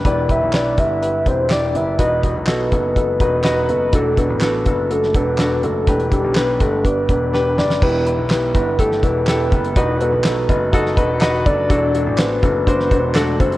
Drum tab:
CC |----------------|----------------|----------------|----------------|
HH |x-x-x-x-x-x-x-x-|x-x-x-x-x-x-x-x-|x-x-x-x-x-x-x-x-|xxx-x-x-x-x-----|
CP |----x-------x---|----x-------x---|----x-------x---|----x-----------|
SD |----o-------o---|----o-------o---|----o----o--o---|----o-------o-oo|
BD |o-o---o---o-----|o-o---o-o-o-----|o-o---o---o-----|o-o---o-o-o-----|

CC |x---------------|----------------|----------------|
HH |--x-x-x-x-x-x-xx|x-x-x-x-x-x-x-x-|x-x-x-x-x-x-x-xx|
CP |----x-------x---|----x-------x---|----x-------x---|
SD |----o----o--o---|----o----o--o---|----o----o--o---|
BD |o-----o-o-o---o-|o-----o-o-o---o-|o-----o-o-o---o-|